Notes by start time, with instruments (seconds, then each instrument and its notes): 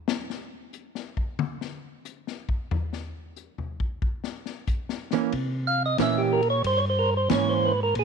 0.08 snare
0.30 snare
0.73 hi-hat pedal
0.95 snare
1.17 kick
1.39 high tom
1.61 snare
2.05 hi-hat pedal
2.27 snare
2.49 kick
2.71 floor tom
2.93 snare
3.36 hi-hat pedal
3.58 floor tom
3.80 kick
4.02 kick
4.24 snare
4.46 snare
4.67 kick, hi-hat pedal
4.89 snare
5.11 hollow-body jazz guitar E3 A#3 C#4, snare
5.32 tonewheel organ C3, kick, ride
5.67 tonewheel organ F5
5.86 tonewheel organ D#5
5.98 tonewheel organ A#2 E5, hollow-body jazz guitar E3 A#3 C#4, kick, snare, hi-hat pedal, ride
6.18 tonewheel organ G4
6.33 tonewheel organ A#4
6.42 ride
6.50 tonewheel organ C#5
6.64 tonewheel organ G2 C5, kick, ride
6.77 tonewheel organ C#5
6.90 tonewheel organ C5
6.99 tonewheel organ A#4
7.17 tonewheel organ C5
7.30 tonewheel organ G#2, hollow-body jazz guitar E3 A#3 C#4, kick, snare, hi-hat pedal, ride
7.34 tonewheel organ C#5
7.49 tonewheel organ C5
7.65 tonewheel organ B4
7.83 tonewheel organ A#4
7.95 tonewheel organ A#2 G#4, kick, ride